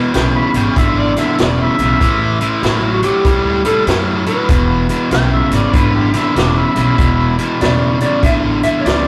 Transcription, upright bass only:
0.15 0.39 B1 medium
0.54 0.68 G#1 medium
0.76 1.15 G#1 medium
1.39 1.64 E1 medium
1.79 1.93 B1 medium
2.01 2.39 A1 medium
2.63 3.01 A1 medium
3.25 3.64 D2 medium
3.87 4.25 F#2 medium
4.49 4.88 E1 medium
5.11 5.36 B1 medium
5.51 5.65 G#1 medium
5.74 6.12 G#1 medium
6.36 6.61 E1 medium
6.77 6.90 B1 medium
6.98 7.37 E1 medium
7.62 8.00 E1 medium
8.23 8.62 A1 medium
8.85 9.08 C#2 medium

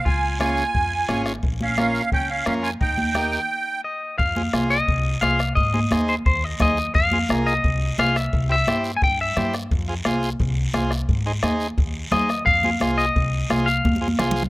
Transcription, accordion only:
0.06 0.38 G#5 medium
0.40 1.22 G#5 medium
1.63 2.10 F5 medium
2.13 2.30 G5 loud
2.30 2.45 F5 medium
2.47 2.55 F5 medium
2.63 2.71 G#5 loud
2.82 3.81 G5 loud

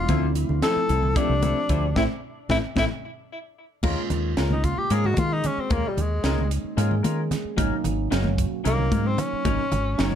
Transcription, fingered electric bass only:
0.09 0.44 D2 loud
0.50 0.61 D2 medium
0.76 muted fingered electric bass stroke soft
0.90 1.13 C2 loud
1.16 muted fingered electric bass stroke soft
1.29 1.52 C2 medium
1.70 1.93 D2 medium
1.96 2.06 A1 loud
2.50 2.60 A1 medium
2.77 2.87 A1 loud
3.84 3.95 D#2 medium
4.11 4.34 D#2 medium
4.37 4.72 C#2 medium
4.78 muted fingered electric bass stroke soft
4.91 5.14 G#2 medium
5.17 5.40 D#3 medium
5.58 muted fingered electric bass stroke soft
5.71 5.82 D#2 loud
5.97 6.21 D#2 medium
6.24 6.59 C#2 medium
6.65 muted fingered electric bass stroke soft
6.78 7.01 G#2 medium
7.05 7.28 D#3 medium
7.45 muted fingered electric bass stroke soft
7.58 7.70 G#1 medium
7.86 8.08 G#1 medium
8.12 8.46 F#1 medium
8.52 muted fingered electric bass stroke soft
8.66 8.89 C2 medium
8.92 9.15 G#2 medium
9.33 muted fingered electric bass stroke soft
9.45 9.57 G#1 medium
9.72 9.95 G#1 medium
9.99 10.15 F#1 medium

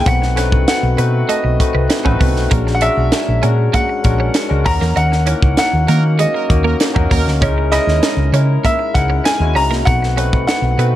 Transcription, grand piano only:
0.07 0.64 F#5 loud
0.68 1.25 F#5 loud
1.29 2.17 D#5 medium
2.75 2.82 F#5 medium
2.82 3.39 E5 loud
3.74 4.69 F#5 loud
4.66 4.97 A#5 loud
4.97 5.57 F#5 loud
5.59 6.21 F#5 loud
6.20 7.08 D#5 medium
7.72 8.29 D#5 loud
8.65 8.96 E5 loud
8.94 9.26 F#5 loud
9.25 9.57 G#5 loud
9.56 9.88 A#5 loud
9.85 10.43 F#5 loud
10.47 10.96 F#5 loud

